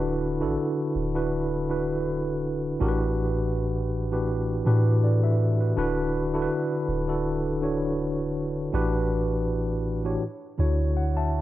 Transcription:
Already playing: 808-style bass D1, tine electric piano D3 D4 E4 F#4 B4
0.40 808-style bass A1, tine electric piano D3 D4 E4 F#4 A4
0.95 808-style bass D1
1.14 tine electric piano D3 D4 E4 F#4 B4
1.69 tine electric piano D3 D4 E4 F#4 B4
2.80 808-style bass A1, tine electric piano A2 E3 D4 F#4 G4 A#4
2.88 tine electric piano B4
4.11 tine electric piano A2 E3 D4 F#4 G4 B4
4.65 tine electric piano A2 E3 D4 F#4 G4 B4, 808-style bass A2
5.04 tine electric piano A4 D5
5.24 tine electric piano B4 E5
5.61 tine electric piano F#4 B4
5.76 808-style bass D1, tine electric piano D3 D4 E4 F#4 B4
6.33 tine electric piano D3 D4 E4 F#4 A4
6.42 tine electric piano B4
6.88 808-style bass D1
7.07 tine electric piano D3 D4 E4 F#4 A4
7.61 tine electric piano D3 D4 E4 F#4 C#5
8.73 808-style bass A1, tine electric piano A2 E3 D4 F#4 G4 B4
10.04 tine electric piano A2 E3 D4 F#4 G4 C#5
10.58 808-style bass D2, tine electric piano D3 D4 E4 F#4 C#5
10.97 tine electric piano C#5 F#5
11.17 tine electric piano E5 A5

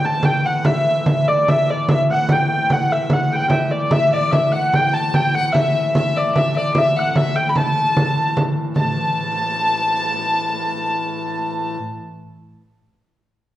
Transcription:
Already playing: pipe organ A2 E3
0.03 hurdy-gurdy A5, frame drum
0.23 hurdy-gurdy G5, frame drum
0.46 hurdy-gurdy F#5
0.65 hurdy-gurdy E5, frame drum
0.86 frame drum
1.06 hurdy-gurdy E5, frame drum
1.27 hurdy-gurdy D5, frame drum
1.48 hurdy-gurdy E5, frame drum
1.70 hurdy-gurdy D5
1.88 hurdy-gurdy E5, frame drum
2.09 hurdy-gurdy F#5, frame drum
2.29 hurdy-gurdy G5, frame drum
2.70 hurdy-gurdy F#5, frame drum
2.92 hurdy-gurdy E5
3.10 hurdy-gurdy F#5, frame drum
3.32 hurdy-gurdy F#5 G5
3.42 hurdy-gurdy G5
3.50 hurdy-gurdy E5, frame drum
3.71 hurdy-gurdy D5
3.91 pipe organ A2 E3, hurdy-gurdy E5, fiddle E5, frame drum
4.12 fiddle D5, hurdy-gurdy D5
4.31 hurdy-gurdy E5, fiddle E5, frame drum
4.52 hurdy-gurdy F#5, fiddle F#5, frame drum
4.73 hurdy-gurdy G5, fiddle G5, frame drum
4.93 hurdy-gurdy A5, fiddle A5, frame drum
5.14 hurdy-gurdy G5, fiddle G5, frame drum
5.34 hurdy-gurdy F#5, fiddle F#5
5.53 hurdy-gurdy E5, frame drum
5.57 fiddle E5
5.76 frame drum
5.95 fiddle E5, hurdy-gurdy E5, frame drum
6.16 fiddle D5, hurdy-gurdy D5, frame drum
6.35 fiddle E5, hurdy-gurdy E5, frame drum
6.57 fiddle D5, hurdy-gurdy D5
6.74 fiddle E5, hurdy-gurdy E5, frame drum
6.96 fiddle F#5, hurdy-gurdy F#5, frame drum
7.16 fiddle E5, hurdy-gurdy E5, frame drum
7.36 fiddle G5, hurdy-gurdy G5, frame drum
7.50 hurdy-gurdy B5, fiddle B5
7.55 fiddle A5, hurdy-gurdy A5, frame drum
7.96 frame drum
8.16 frame drum
8.37 frame drum
8.57 frame drum
8.76 pipe organ A2 E3, fiddle A5, hurdy-gurdy A5, frame drum

